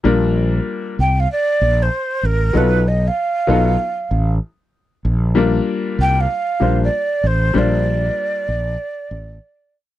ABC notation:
X:1
M:4/4
L:1/16
Q:"Swing 16ths" 1/4=96
K:Bb
V:1 name="Flute"
z6 g f d3 c3 B2 | =B2 ^d ^e8 z4 z | z6 g f4 d3 c2 | d12- d2 z2 |]
V:2 name="Upright piano"
[G,B,DFB]6 z8 z2 | [^F,=B,^D^EA]2 z4 [F,B,DEA]2 z8 | z2 [G,B,DFB]6 z2 [G,B,DFc]2 z4 | [G,B,DFc]6 z8 z2 |]
V:3 name="Fretless electric bass" clef=bass
B,,,4 z2 C,,2 z2 B,,,2 z2 A,,,2 | =B,,,4 z2 B,,,2 z2 A,,,2 z4 | B,,,4 z2 C,,2 z2 B,,,2 z2 A,,,2 | B,,,4 z2 B,,,2 z2 A,,,2 z4 |]